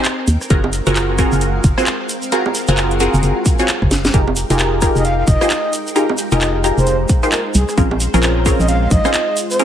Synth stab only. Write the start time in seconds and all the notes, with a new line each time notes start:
0.50 C4 F4 F#4 G#4 A#4
0.87 C4 F4 F#4 G#4 A#4
1.18 C4 F4 F#4 G#4 A#4
1.78 C4 F4 F#4 G#4 C5
2.32 C4 F4 F#4 G#4 A#4
2.68 C4 F4 F#4 G#4 A#4
3.00 C4 F4 F#4 G#4 A#4
3.59 C4 F4 F#4 G#4 C#5
4.14 D#4 F4 G4 G#4 A#4
4.50 D#4 F4 G4 G#4 A#4
4.82 D#4 F4 G4 G#4 A#4
5.41 D#4 F4 G4 G#4 C5
5.96 D#4 F4 G4 G#4 A#4
6.32 D#4 F4 G4 G#4 A#4
6.64 D#4 F4 G4 G#4 A#4
7.23 D#4 F4 G4 G#4 C5
7.78 C4 C#4 F4 G#4 A#4
8.14 C4 C#4 F4 G#4 A#4
8.46 C4 C#4 F4 G#4 A#4
9.05 C4 C#4 F4 G#4 C5
9.59 C4 C#4 F4 G#4 A#4